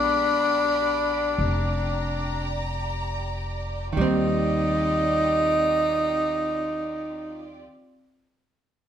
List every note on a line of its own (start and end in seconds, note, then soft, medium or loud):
0.00 1.34 A#1 medium
0.00 3.95 G#3 soft
0.00 3.96 B3 soft
0.00 2.63 D4 medium
0.00 3.95 D4 soft
0.00 3.90 G4 medium
0.00 3.91 D5 medium
0.00 1.36 B5 medium
1.37 3.91 F1 medium
1.37 3.92 A#5 medium
3.93 7.63 D#3 soft
3.93 7.60 C4 medium
3.93 7.59 F4 medium
3.93 7.59 G4 medium
3.93 7.60 D5 medium
3.97 7.63 D#2 medium
3.97 7.67 G3 soft
3.97 7.65 D#4 medium
4.01 7.72 C4 medium